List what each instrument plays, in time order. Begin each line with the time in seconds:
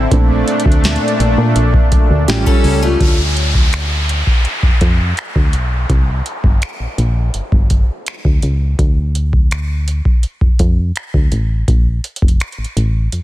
0.11 fm bass A#1, analog synth pad A#2 A3 D4, felt piano A3 C4 D4, kick, closed hi-hat
0.48 closed hi-hat
0.60 closed hi-hat
0.66 fm bass D2, kick
0.72 closed hi-hat
0.84 snare, closed hi-hat
0.96 closed hi-hat
1.08 closed hi-hat
1.20 fm bass A#1, closed hi-hat
1.38 fm bass A#2
1.56 fm bass A#1, closed hi-hat
1.74 kick
1.92 fm bass D2, kick, closed hi-hat
2.10 fm bass D2
2.28 fm bass A1, felt piano G3 C#4 F4, analog synth pad G3 C#4, steel-string acoustic guitar G4, snare, closed hi-hat
2.46 steel-string acoustic guitar C#4 A4, kick
2.64 fm bass C#2, open hi-hat
2.83 steel-string acoustic guitar A3 F4
3.00 fm bass D2, kick, closed hi-hat, downlifter
3.37 closed hi-hat
3.55 kick
3.73 finger snap, closed hi-hat
4.09 closed hi-hat
4.27 kick
4.45 closed hi-hat
4.63 fm bass F2, kick
4.81 fm bass F2, kick, closed hi-hat
5.17 finger snap, closed hi-hat
5.36 fm bass D2, kick
5.53 fm bass B1, closed hi-hat
5.90 fm bass C2, kick, closed hi-hat
6.26 closed hi-hat
6.44 fm bass G1, kick
6.62 finger snap, closed hi-hat
6.80 fm bass A#1
6.98 fm bass A#1, closed hi-hat
7.34 fm bass G1, closed hi-hat
7.52 fm bass G1, kick
7.70 kick, closed hi-hat
8.06 finger snap, closed hi-hat
8.25 fm bass D2, kick
8.42 fm bass C#2, closed hi-hat
8.79 fm bass D2, kick, closed hi-hat
9.15 closed hi-hat
9.33 kick
9.51 finger snap, closed hi-hat
9.88 closed hi-hat
10.05 kick
10.23 closed hi-hat
10.41 fm bass F2, kick
10.59 fm bass F2, kick, closed hi-hat
10.96 finger snap, closed hi-hat
11.14 fm bass D2, kick
11.32 fm bass A1, closed hi-hat
11.68 fm bass A#1, kick, closed hi-hat
12.04 closed hi-hat
12.16 closed hi-hat
12.22 fm bass F1, kick
12.28 closed hi-hat
12.40 finger snap, closed hi-hat
12.52 closed hi-hat
12.58 fm bass A1
12.64 closed hi-hat
12.77 fm bass A1, closed hi-hat
13.12 fm bass F2, closed hi-hat